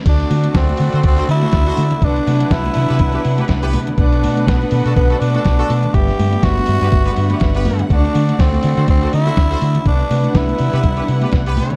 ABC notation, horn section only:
X:1
M:4/4
L:1/16
Q:"Swing 16ths" 1/4=122
K:Dmix
V:1 name="Horn section"
z6 z [FAc] z [FAc] z [FAc] z [FAc]2 z | z6 z [B,GB] z [B,GB] z [B,GB] z [B,GB]2 z | z6 z [DFA] z [DFA] z [DFA] z [DFA]2 z | z6 z [B,GB] z [B,GB] z [B,GB] z [B,GB]3 |
z6 z [FAc] z [FAc] z [FAc] z [FAc]2 z | z6 z [B,GB] z [B,GB] z [B,GB] z [B,GB]3 |]